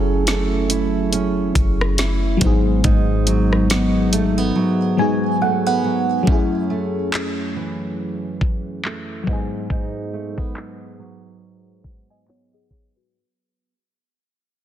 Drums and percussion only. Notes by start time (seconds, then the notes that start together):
0.27 snare, closed hi-hat
0.70 closed hi-hat
1.13 closed hi-hat
1.55 kick, closed hi-hat
1.81 cross-stick
1.98 snare, closed hi-hat
2.41 kick, closed hi-hat
2.84 kick, closed hi-hat
3.27 closed hi-hat
3.53 cross-stick
3.70 snare, closed hi-hat
4.13 closed hi-hat
6.27 kick
7.14 clap
8.41 kick
8.85 clap
9.27 kick
9.70 kick
10.38 kick
10.57 clap
11.84 kick
12.28 clap
12.70 kick